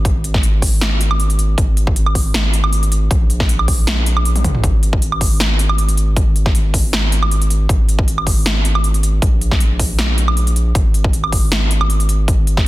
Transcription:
0.00 1.56 G#1 medium
0.05 kick loud
0.05 closed hi-hat medium
0.24 closed hi-hat medium
0.34 kick loud
0.34 snare soft
0.43 closed hi-hat medium
0.62 kick medium
0.62 open hi-hat loud
0.81 snare loud
0.81 closed hi-hat medium
1.01 closed hi-hat medium
1.11 high woodblock medium
1.20 closed hi-hat medium
1.30 closed hi-hat medium
1.39 closed hi-hat medium
1.58 3.09 G#1 medium
1.58 kick loud
1.58 closed hi-hat medium
1.77 closed hi-hat medium
1.87 kick loud
1.96 closed hi-hat medium
2.06 high woodblock medium
2.15 kick medium
2.15 open hi-hat loud
2.34 snare loud
2.34 closed hi-hat medium
2.53 closed hi-hat medium
2.64 high woodblock medium
2.73 closed hi-hat medium
2.83 closed hi-hat medium
2.92 closed hi-hat medium
3.11 4.62 A#1 medium
3.11 kick loud
3.11 closed hi-hat medium
3.30 closed hi-hat medium
3.40 kick loud
3.40 snare soft
3.49 closed hi-hat medium
3.59 high woodblock medium
3.68 kick medium
3.68 open hi-hat loud
3.87 snare loud
3.87 closed hi-hat medium
4.06 closed hi-hat medium
4.17 high woodblock medium
4.25 closed hi-hat medium
4.36 closed hi-hat medium
4.36 high tom medium
4.44 kick medium
4.44 closed hi-hat medium
4.44 mid tom medium
4.55 mid tom medium
4.64 7.68 G#1 medium
4.64 kick loud
4.64 closed hi-hat medium
4.83 closed hi-hat medium
4.93 kick loud
5.02 closed hi-hat medium
5.12 high woodblock medium
5.21 kick medium
5.21 open hi-hat loud
5.40 snare loud
5.40 closed hi-hat medium
5.59 closed hi-hat medium
5.69 high woodblock medium
5.78 closed hi-hat medium
5.89 closed hi-hat medium
5.97 closed hi-hat medium
6.17 kick loud
6.17 closed hi-hat medium
6.36 closed hi-hat medium
6.46 kick loud
6.46 snare soft
6.55 closed hi-hat medium
6.74 kick medium
6.74 open hi-hat medium
6.93 snare loud
6.93 closed hi-hat medium
7.12 closed hi-hat medium
7.23 high woodblock medium
7.31 closed hi-hat medium
7.42 closed hi-hat medium
7.50 closed hi-hat medium
7.69 9.20 G#1 medium
7.69 kick loud
7.69 closed hi-hat medium
7.89 closed hi-hat medium
7.99 kick loud
8.08 closed hi-hat medium
8.18 high woodblock medium
8.27 kick medium
8.27 open hi-hat medium
8.46 snare loud
8.46 closed hi-hat medium
8.65 closed hi-hat medium
8.75 high woodblock medium
8.84 closed hi-hat medium
8.94 closed hi-hat medium
9.03 closed hi-hat medium
9.22 10.73 A#1 medium
9.22 kick loud
9.22 closed hi-hat medium
9.41 closed hi-hat medium
9.51 kick loud
9.51 snare soft
9.60 closed hi-hat medium
9.79 kick medium
9.79 open hi-hat medium
9.99 snare loud
9.99 closed hi-hat medium
10.18 closed hi-hat medium
10.28 high woodblock medium
10.37 closed hi-hat medium
10.47 closed hi-hat medium
10.56 closed hi-hat medium
10.75 12.68 G#1 medium
10.75 kick loud
10.75 closed hi-hat medium
10.94 closed hi-hat medium
11.04 kick loud
11.13 closed hi-hat medium
11.24 high woodblock medium
11.32 kick medium
11.32 open hi-hat loud
11.52 snare loud
11.52 closed hi-hat medium
11.71 closed hi-hat medium
11.81 high woodblock medium
11.90 closed hi-hat medium
12.00 closed hi-hat medium
12.09 closed hi-hat medium
12.28 kick loud
12.28 closed hi-hat medium
12.47 closed hi-hat medium
12.57 kick loud
12.57 snare soft

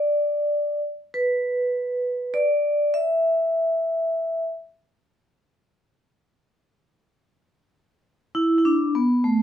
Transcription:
0.00 0.79 D5 medium
1.14 2.38 B4 medium
2.34 2.96 D5 medium
2.94 4.41 E5 medium
8.35 8.57 E4 medium
8.58 8.65 E4 medium
8.65 8.93 D4 medium
8.95 9.23 B3 medium
9.24 9.42 A3 medium

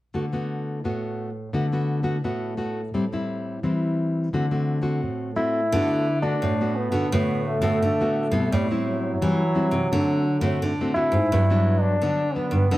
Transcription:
0.14 0.80 D3 medium
0.14 0.24 A3 soft
0.14 0.25 B3 soft
0.14 0.25 F#4 medium
0.33 0.79 A3 soft
0.33 0.79 B3 soft
0.33 0.79 F#4 medium
0.84 1.50 A2 medium
0.84 1.29 A3 soft
0.84 1.29 B3 soft
0.84 1.29 F#4 soft
1.53 2.20 D3 medium
1.53 1.65 A3 soft
1.53 1.66 B3 soft
1.53 1.66 F#4 medium
1.72 2.01 A3 medium
1.72 2.01 B3 medium
1.72 2.02 F#4 medium
2.03 2.16 A3 medium
2.03 2.17 B3 medium
2.03 2.17 F#4 medium
2.24 2.90 A2 medium
2.24 2.53 A3 soft
2.24 2.53 B3 medium
2.24 2.53 F#4 medium
2.57 2.80 A3 soft
2.57 2.81 B3 medium
2.57 2.81 F#4 medium
2.94 3.60 A2 medium
2.94 3.04 G3 medium
2.94 3.04 C4 medium
2.94 3.05 E4 medium
3.13 3.59 G3 medium
3.13 3.59 C4 medium
3.13 3.59 E4 medium
3.63 4.30 E3 medium
3.63 4.27 G3 soft
3.63 4.28 C4 medium
3.63 4.28 E4 soft
4.33 4.99 D3 medium
4.33 4.45 A3 medium
4.33 4.45 C4 soft
4.33 4.45 F#4 medium
4.51 4.80 A3 medium
4.51 4.80 C4 medium
4.51 4.81 F#4 medium
4.82 5.30 A3 medium
4.82 5.31 C4 medium
4.82 5.31 F#4 medium
5.03 5.69 A2 medium
5.36 5.60 A3 medium
5.36 5.60 C4 soft
5.36 6.20 E4 medium
5.36 5.60 F#4 medium
5.72 6.32 D3 loud
5.72 6.40 D3 medium
5.72 6.06 A3 medium
5.72 6.06 B3 medium
5.72 6.06 F#4 medium
6.22 6.53 A3 medium
6.22 6.53 B3 medium
6.22 6.77 D4 medium
6.22 6.53 F#4 medium
6.42 6.87 A2 medium
6.42 7.09 A2 medium
6.61 6.90 A3 medium
6.61 6.90 B3 medium
6.61 6.90 F#4 medium
6.76 7.45 B3 medium
6.92 7.08 D3 medium
6.92 7.05 A3 medium
6.92 7.05 B3 medium
6.92 7.06 F#4 medium
7.12 7.57 A2 loud
7.12 7.79 D3 soft
7.12 7.59 A3 soft
7.12 7.59 B3 soft
7.12 7.60 F#4 medium
7.46 8.47 A3 medium
7.61 7.78 A2 medium
7.61 7.92 A3 medium
7.61 7.93 B3 medium
7.61 7.93 F#4 medium
7.82 8.49 A2 medium
7.82 8.27 D3 medium
8.01 8.30 A3 medium
8.01 8.30 B3 medium
8.01 8.30 F#4 medium
8.31 8.48 B2 medium
8.31 8.69 G3 medium
8.31 8.70 C4 medium
8.31 8.70 E4 medium
8.52 9.18 A2 medium
8.52 9.12 A2 medium
8.52 8.68 G3 medium
8.71 9.17 G3 medium
8.71 9.17 C4 medium
8.71 9.17 E4 medium
8.86 10.65 F#3 medium
9.22 9.88 E3 soft
9.22 9.67 E3 medium
9.22 9.42 G3 medium
9.22 9.42 C4 soft
9.22 9.43 E4 medium
9.55 9.76 G3 soft
9.55 9.77 C4 soft
9.55 9.77 E4 medium
9.71 9.87 C3 medium
9.92 10.58 D3 medium
9.92 10.37 D3 medium
9.92 10.24 A3 soft
9.92 10.25 C4 soft
9.92 10.25 F#4 medium
10.41 10.57 A2 medium
10.41 10.72 A3 medium
10.41 10.72 C4 medium
10.41 10.73 F#4 medium
10.62 11.28 A2 medium
10.62 11.06 D3 medium
10.81 10.92 A3 medium
10.81 10.92 C4 medium
10.81 10.92 F#4 medium
10.94 11.18 A3 soft
10.94 11.19 C4 medium
10.94 11.82 E4 loud
10.94 11.19 F#4 medium
11.12 11.27 G#2 medium
11.32 11.98 G2 medium
11.32 11.91 G2 loud
11.32 11.44 F#3 medium
11.32 11.44 B3 medium
11.32 11.44 D4 medium
11.50 11.96 F#3 medium
11.50 11.96 B3 medium
11.50 11.97 D4 medium
11.80 12.36 D4 medium
12.02 12.46 D3 medium
12.02 12.68 D3 soft
12.02 12.22 F#3 medium
12.02 12.22 B3 medium
12.02 12.23 D4 medium
12.34 12.65 F#3 soft
12.34 12.78 B3 medium
12.34 12.65 B3 soft
12.34 12.65 D4 medium
12.51 12.67 G2 medium
12.71 12.78 G2 medium
12.71 12.78 D3 medium
12.71 12.78 F#3 medium
12.71 12.78 B3 soft
12.71 12.78 D4 medium

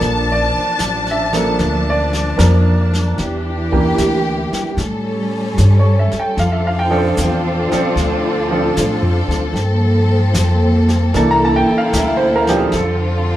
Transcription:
0.00 0.51 A#1 medium
0.00 0.75 F3 medium
0.00 0.75 A#3 medium
0.00 0.75 D4 medium
0.00 4.73 D4 medium
0.00 0.76 A4 medium
0.00 3.14 A5 medium
0.00 brush sweep soft
0.00 snare soft
0.04 3.17 F3 medium
0.32 1.05 D5 medium
0.56 muted upright bass stroke soft
0.79 1.57 A1 medium
0.79 snare soft
0.79 hi-hat pedal soft
1.07 snare soft
1.11 1.84 E5 medium
1.33 1.56 F3 medium
1.33 1.57 A#3 medium
1.33 1.57 D4 medium
1.33 1.57 A4 medium
1.33 snare soft
1.59 2.36 D2 medium
1.59 brush sweep soft
1.59 snare soft
1.90 2.15 D5 medium
2.13 snare soft
2.37 3.16 F2 medium
2.37 2.87 F3 medium
2.37 2.87 A#3 medium
2.37 2.87 D4 soft
2.37 2.88 A#4 medium
2.37 snare medium
2.37 hi-hat pedal soft
2.94 snare soft
3.18 3.96 E2 medium
3.18 4.77 E3 medium
3.18 4.77 G4 medium
3.18 brush sweep soft
3.18 snare soft
3.72 4.72 E3 medium
3.72 4.72 A#3 medium
3.72 4.72 D4 soft
3.72 4.72 G4 medium
3.72 kick soft
3.98 4.49 D2 medium
3.98 snare medium
3.98 hi-hat pedal soft
4.52 muted upright bass stroke soft
4.52 snare soft
4.77 5.54 A2 medium
4.77 6.37 G3 medium
4.77 6.36 C#4 medium
4.77 13.37 A4 medium
4.77 brush sweep soft
4.77 snare soft
5.58 6.09 G2 medium
5.58 snare medium
5.58 hi-hat pedal medium
5.80 6.09 C#5 medium
5.99 6.18 E5 medium
6.12 muted upright bass stroke soft
6.12 snare soft
6.20 6.34 G5 medium
6.37 7.15 F2 medium
6.37 9.53 C4 medium
6.37 9.53 D4 medium
6.37 9.53 F4 medium
6.37 6.56 F5 medium
6.37 brush sweep soft
6.37 snare soft
6.52 6.62 E5 medium
6.67 6.93 F5 medium
6.79 6.97 G5 medium
6.91 7.14 F3 medium
6.91 7.14 C4 medium
6.91 7.14 D4 medium
6.91 7.14 A4 medium
6.98 8.96 C5 medium
7.17 7.68 E2 medium
7.17 snare medium
7.17 hi-hat pedal medium
7.72 7.94 F3 medium
7.72 7.94 C4 medium
7.72 7.95 D4 medium
7.72 7.95 A4 medium
7.72 muted upright bass stroke soft
7.72 snare soft
7.96 8.73 D2 medium
7.96 brush sweep soft
7.96 snare soft
8.51 8.73 F3 medium
8.51 8.74 C4 medium
8.51 8.74 D4 soft
8.51 8.74 A4 medium
8.77 9.01 A2 medium
8.77 snare medium
8.77 hi-hat pedal medium
9.02 9.27 F2 medium
9.28 9.52 D2 medium
9.28 snare soft
9.53 10.31 G2 medium
9.53 brush sweep soft
9.53 snare soft
9.57 11.13 F3 medium
9.57 12.70 A#3 medium
9.57 11.13 C4 medium
10.34 11.11 F2 medium
10.34 snare medium
10.34 hi-hat pedal medium
10.89 snare soft
11.14 11.64 C2 medium
11.14 13.37 D3 medium
11.14 11.63 E3 medium
11.14 11.63 A#3 medium
11.14 11.63 D4 soft
11.14 12.71 E4 medium
11.14 11.64 A4 medium
11.14 11.33 A5 medium
11.14 brush sweep soft
11.14 snare soft
11.31 11.39 A#5 medium
11.45 11.70 A5 medium
11.56 11.74 G5 medium
11.69 muted upright bass stroke soft
11.78 11.91 F5 medium
11.93 12.70 D2 medium
11.93 snare medium
11.93 hi-hat pedal medium
11.98 12.22 E5 medium
12.17 12.45 C5 medium
12.36 12.53 A#4 medium
12.47 12.70 F3 medium
12.47 12.70 C4 medium
12.47 12.70 D4 medium
12.47 12.71 G4 medium
12.47 snare soft
12.57 12.70 G#4 medium
12.72 13.37 F2 medium
12.72 13.37 C4 medium
12.72 13.37 F4 medium
12.72 13.37 A4 medium
12.72 brush sweep soft
12.72 snare soft

